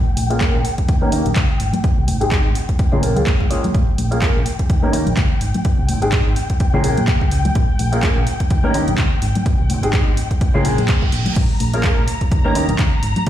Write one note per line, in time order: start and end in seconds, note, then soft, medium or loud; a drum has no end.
0.00 3.73 G5 medium
0.06 shaker soft
0.17 0.50 A#1 medium
0.17 open hi-hat loud
0.17 high conga medium
0.17 shaker medium
0.30 0.38 A#3 medium
0.30 0.38 C#4 medium
0.30 0.38 F4 medium
0.30 0.38 G#4 medium
0.30 0.39 A#4 medium
0.30 closed hi-hat soft
0.30 shaker soft
0.40 0.54 A#3 medium
0.40 0.54 C#4 medium
0.40 0.54 F4 medium
0.40 0.54 G#4 medium
0.40 0.54 A#4 loud
0.40 kick loud
0.40 clap loud
0.40 closed hi-hat medium
0.54 0.63 A#1 medium
0.54 high conga medium
0.54 shaker soft
0.65 open hi-hat loud
0.65 shaker medium
0.78 kick medium
0.78 closed hi-hat medium
0.88 1.00 D#2 medium
0.88 kick loud
0.88 closed hi-hat medium
1.01 1.10 A#3 medium
1.01 1.10 C#4 medium
1.01 1.11 D#4 medium
1.01 1.11 G4 medium
1.01 1.11 A#4 loud
1.01 high conga medium
1.01 shaker soft
1.12 1.23 D#2 medium
1.12 1.25 A#3 medium
1.12 1.25 C#4 medium
1.12 1.25 D#4 medium
1.12 1.26 G4 medium
1.12 1.26 A#4 medium
1.12 open hi-hat loud
1.12 shaker medium
1.25 1.34 A#1 medium
1.25 closed hi-hat soft
1.25 low conga medium
1.25 shaker soft
1.36 1.47 C#2 medium
1.36 kick loud
1.36 clap loud
1.36 closed hi-hat medium
1.36 high conga medium
1.36 shaker soft
1.50 shaker soft
1.60 1.71 G#1 medium
1.60 open hi-hat loud
1.73 closed hi-hat medium
1.73 high conga loud
1.73 low conga medium
1.73 shaker soft
1.84 kick loud
1.84 closed hi-hat medium
1.97 2.09 C2 loud
1.97 shaker soft
2.08 2.41 G#1 medium
2.08 open hi-hat loud
2.08 high conga loud
2.08 shaker medium
2.20 2.29 G#3 medium
2.20 2.29 C4 medium
2.20 2.29 D#4 medium
2.20 2.29 G4 medium
2.20 2.29 G#4 medium
2.20 closed hi-hat soft
2.31 2.44 G#3 medium
2.31 2.44 C4 medium
2.31 2.44 D#4 medium
2.31 2.45 G4 medium
2.31 2.45 G#4 medium
2.31 kick loud
2.31 clap loud
2.31 closed hi-hat medium
2.45 2.53 G#1 medium
2.45 high conga medium
2.45 shaker soft
2.55 open hi-hat loud
2.55 shaker medium
2.69 kick medium
2.69 closed hi-hat soft
2.79 kick loud
2.79 closed hi-hat medium
2.92 3.01 C#3 medium
2.92 3.00 G#3 medium
2.92 3.01 A#3 medium
2.92 3.01 C#4 medium
2.92 3.01 F4 medium
2.92 3.01 G#4 loud
2.92 high conga medium
2.92 shaker soft
3.02 3.17 A#1 medium
3.02 3.14 G#3 medium
3.02 3.14 A#3 medium
3.02 3.14 C#4 medium
3.02 3.14 F4 medium
3.02 3.14 A#4 medium
3.02 open hi-hat loud
3.02 shaker medium
3.16 3.25 C#2 medium
3.16 3.34 G#3 medium
3.16 3.34 A#3 medium
3.16 3.34 C#4 medium
3.16 3.34 F4 medium
3.16 3.34 G#4 medium
3.16 closed hi-hat soft
3.16 low conga medium
3.16 shaker soft
3.26 kick loud
3.26 clap loud
3.26 closed hi-hat medium
3.26 high conga medium
3.26 shaker soft
3.40 kick medium
3.40 shaker soft
3.50 3.63 G#3 medium
3.50 3.64 A#3 medium
3.50 3.64 C#4 medium
3.50 3.64 F4 medium
3.50 3.64 G#4 medium
3.50 open hi-hat loud
3.64 closed hi-hat soft
3.64 high conga medium
3.64 low conga medium
3.64 shaker soft
3.74 3.85 A#1 loud
3.74 11.37 G5 medium
3.74 kick loud
3.74 closed hi-hat medium
3.87 shaker soft
3.98 4.32 A#1 medium
3.98 open hi-hat loud
3.98 high conga medium
3.98 shaker medium
4.11 4.19 A#3 medium
4.11 4.19 C#4 medium
4.11 4.19 F4 medium
4.11 4.19 G#4 medium
4.11 4.20 A#4 medium
4.11 closed hi-hat medium
4.21 4.35 A#3 medium
4.21 4.35 C#4 medium
4.21 4.35 F4 medium
4.21 4.35 G#4 medium
4.21 4.35 A#4 medium
4.21 kick loud
4.21 clap loud
4.21 closed hi-hat medium
4.35 4.44 A#1 medium
4.35 high conga medium
4.35 shaker soft
4.46 open hi-hat loud
4.46 shaker medium
4.59 kick medium
4.59 closed hi-hat soft
4.70 4.81 D#2 medium
4.70 kick loud
4.70 closed hi-hat medium
4.82 4.91 A#3 medium
4.82 4.91 C#4 medium
4.82 4.91 D#4 medium
4.82 4.91 G4 medium
4.82 4.91 A#4 medium
4.82 high conga medium
4.82 shaker soft
4.92 5.04 D#2 medium
4.92 5.06 A#3 medium
4.92 5.06 C#4 medium
4.92 5.06 D#4 medium
4.92 5.06 G4 medium
4.92 5.06 A#4 medium
4.92 open hi-hat loud
4.92 shaker medium
5.06 5.15 A#1 medium
5.06 closed hi-hat soft
5.06 low conga medium
5.06 shaker soft
5.17 5.28 C#2 medium
5.17 kick loud
5.17 clap loud
5.17 closed hi-hat medium
5.17 high conga medium
5.17 shaker soft
5.31 shaker soft
5.41 5.52 G#1 medium
5.41 open hi-hat loud
5.54 closed hi-hat soft
5.54 high conga medium
5.54 low conga medium
5.54 shaker soft
5.65 muted fingered electric bass stroke soft
5.65 kick loud
5.65 closed hi-hat medium
5.65 shaker soft
5.78 5.90 C2 loud
5.78 shaker soft
5.88 6.22 G#1 medium
5.88 open hi-hat loud
5.88 high conga medium
5.88 shaker medium
6.01 6.10 G#3 medium
6.01 6.10 C4 medium
6.01 6.10 D#4 medium
6.01 6.10 G4 medium
6.01 6.10 G#4 medium
6.01 closed hi-hat medium
6.12 6.25 G#3 medium
6.12 6.25 C4 medium
6.12 6.25 D#4 medium
6.12 6.26 G#4 loud
6.12 kick loud
6.12 clap loud
6.12 closed hi-hat medium
6.26 6.34 G#1 medium
6.26 high conga medium
6.26 shaker soft
6.36 open hi-hat loud
6.36 shaker medium
6.50 kick medium
6.50 closed hi-hat soft
6.60 kick loud
6.60 closed hi-hat medium
6.73 6.85 C#3 medium
6.73 6.82 G#3 medium
6.73 6.82 A#3 medium
6.73 6.82 C#4 medium
6.73 6.83 F4 medium
6.73 6.83 G#4 loud
6.73 high conga medium
6.73 shaker soft
6.83 6.95 A#1 medium
6.83 6.97 G#3 medium
6.83 6.97 A#3 medium
6.83 6.97 C#4 medium
6.83 6.97 F4 medium
6.83 6.97 G#4 medium
6.83 open hi-hat loud
6.97 7.09 A#2 medium
6.97 closed hi-hat soft
6.97 low conga medium
6.97 shaker soft
7.08 7.28 C#2 medium
7.08 kick loud
7.08 clap loud
7.08 closed hi-hat medium
7.08 high conga medium
7.08 shaker soft
7.21 kick medium
7.31 7.51 C#2 medium
7.31 open hi-hat loud
7.45 closed hi-hat medium
7.45 high conga medium
7.45 low conga medium
7.45 shaker soft
7.55 7.66 A#1 loud
7.55 kick loud
7.55 closed hi-hat medium
7.68 shaker soft
7.79 8.12 A#1 medium
7.79 open hi-hat loud
7.79 high conga medium
7.79 shaker medium
7.92 8.00 A#3 medium
7.92 8.00 C#4 medium
7.92 8.00 F4 medium
7.92 8.01 G#4 medium
7.92 8.01 A#4 medium
7.92 closed hi-hat medium
8.03 8.16 A#3 medium
8.03 8.16 C#4 medium
8.03 8.16 F4 medium
8.03 8.16 G#4 medium
8.03 8.16 A#4 loud
8.03 kick loud
8.03 clap loud
8.03 closed hi-hat medium
8.16 8.25 A#1 medium
8.16 high conga medium
8.16 shaker soft
8.27 open hi-hat loud
8.27 shaker loud
8.40 kick medium
8.40 closed hi-hat medium
8.50 8.62 D#2 medium
8.50 kick loud
8.50 closed hi-hat medium
8.50 shaker medium
8.64 8.73 A#3 medium
8.64 8.73 C#4 medium
8.64 8.73 D#4 medium
8.64 8.73 G4 medium
8.64 8.73 A#4 loud
8.64 high conga medium
8.64 shaker soft
8.74 8.85 D#2 medium
8.74 8.87 A#3 medium
8.74 8.87 C#4 medium
8.74 8.88 D#4 medium
8.74 8.88 G4 medium
8.74 8.88 A#4 medium
8.74 open hi-hat medium
8.74 shaker medium
8.88 8.96 A#1 medium
8.88 closed hi-hat medium
8.88 low conga medium
8.88 shaker soft
8.98 9.09 C#2 medium
8.98 kick loud
8.98 clap loud
8.98 closed hi-hat medium
8.98 high conga medium
8.98 shaker medium
9.13 shaker soft
9.22 9.33 G#1 medium
9.22 open hi-hat medium
9.22 shaker medium
9.35 closed hi-hat medium
9.35 high conga medium
9.35 low conga medium
9.35 shaker soft
9.46 muted fingered electric bass stroke soft
9.46 kick loud
9.46 closed hi-hat medium
9.59 9.71 C2 loud
9.59 shaker soft
9.69 10.03 G#1 medium
9.69 open hi-hat loud
9.69 high conga medium
9.69 shaker loud
9.82 9.91 G#3 medium
9.82 9.91 C4 medium
9.82 9.91 D#4 medium
9.82 9.91 G4 medium
9.82 9.91 G#4 medium
9.82 closed hi-hat medium
9.82 shaker soft
9.93 10.06 G#3 medium
9.93 10.06 C4 medium
9.93 10.07 D#4 medium
9.93 10.07 G4 medium
9.93 10.07 G#4 medium
9.93 kick loud
9.93 clap loud
9.93 closed hi-hat medium
10.06 10.15 G#1 medium
10.06 high conga medium
10.06 shaker soft
10.17 open hi-hat loud
10.17 shaker medium
10.31 kick medium
10.31 closed hi-hat soft
10.41 kick loud
10.41 closed hi-hat medium
10.41 reverse cymbal medium
10.41 shaker medium
10.54 10.66 C#3 medium
10.54 10.63 G#3 medium
10.54 10.63 A#3 medium
10.54 10.63 C#4 medium
10.54 10.63 F4 medium
10.54 10.63 G#4 loud
10.54 high conga medium
10.54 shaker soft
10.65 10.76 A#1 medium
10.65 10.78 G#3 medium
10.65 10.78 A#3 medium
10.65 10.78 C#4 medium
10.65 10.78 F4 medium
10.65 10.78 G#4 medium
10.65 open hi-hat loud
10.65 shaker medium
10.78 10.87 A#2 medium
10.78 closed hi-hat medium
10.78 low conga medium
10.78 shaker soft
10.88 kick loud
10.88 clap loud
10.88 closed hi-hat medium
10.88 high conga medium
10.88 shaker medium
11.02 kick medium
11.12 11.23 A#1 medium
11.12 open hi-hat medium
11.26 closed hi-hat medium
11.26 high conga medium
11.26 low conga medium
11.26 shaker soft
11.36 11.47 A#1 loud
11.36 13.30 A#5 medium
11.36 kick loud
11.36 closed hi-hat medium
11.36 crash medium
11.50 shaker soft
11.60 11.93 A#1 medium
11.60 open hi-hat loud
11.60 high conga loud
11.60 shaker loud
11.73 11.81 A#3 medium
11.73 11.81 C#4 medium
11.73 11.82 F4 medium
11.73 11.82 G#4 medium
11.73 11.82 A#4 medium
11.73 closed hi-hat medium
11.73 shaker soft
11.84 11.97 A#3 medium
11.84 11.97 C#4 medium
11.84 11.97 F4 medium
11.84 11.97 G#4 medium
11.84 11.97 A#4 loud
11.84 kick loud
11.84 clap loud
11.84 closed hi-hat medium
11.97 12.06 A#1 medium
11.97 high conga medium
11.97 shaker soft
12.07 open hi-hat loud
12.07 shaker medium
12.21 kick medium
12.21 closed hi-hat medium
12.21 shaker soft
12.32 12.42 D#2 medium
12.32 kick loud
12.32 closed hi-hat medium
12.32 shaker medium
12.44 12.53 A#3 medium
12.44 12.54 C#4 medium
12.44 12.54 D#4 medium
12.44 12.54 G4 medium
12.44 12.54 A#4 medium
12.44 high conga medium
12.44 shaker soft
12.55 12.66 D#2 medium
12.55 12.68 A#3 medium
12.55 12.68 C#4 medium
12.55 12.69 D#4 medium
12.55 12.69 G4 medium
12.55 12.69 A#4 medium
12.55 open hi-hat loud
12.55 shaker medium
12.69 12.77 A#1 medium
12.69 closed hi-hat medium
12.69 low conga medium
12.69 shaker soft
12.79 12.90 C#2 loud
12.79 kick loud
12.79 clap loud
12.79 closed hi-hat medium
12.79 high conga medium
12.79 shaker medium
12.93 shaker soft
13.03 13.14 G#1 medium
13.03 open hi-hat loud
13.03 shaker loud
13.16 closed hi-hat medium
13.16 high conga medium
13.16 low conga loud
13.16 shaker soft
13.27 closed hi-hat medium